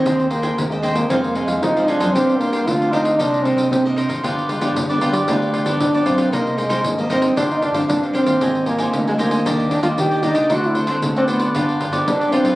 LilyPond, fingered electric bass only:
\new Staff \with { instrumentName = "Fingered electric bass" } { \clef bass \time 4/4 \key g \phrygian \tempo 4 = 115 ees,4 ees,4 f,8. f,16 f8. fis,16 | g,4 d,4 c,8. c,16 c8. aes,,16 | g,,4 g,,4 d,8. g,,16 g,,8 b,,8 | c,4 aes,,4 g,,8. g,,16 g,8. ees,16 |
aes,,4 d,4 ees,8. ees,16 ees8. des,16 | d,4 d,4 g,,8. g,,16 g,8. b,,16 | }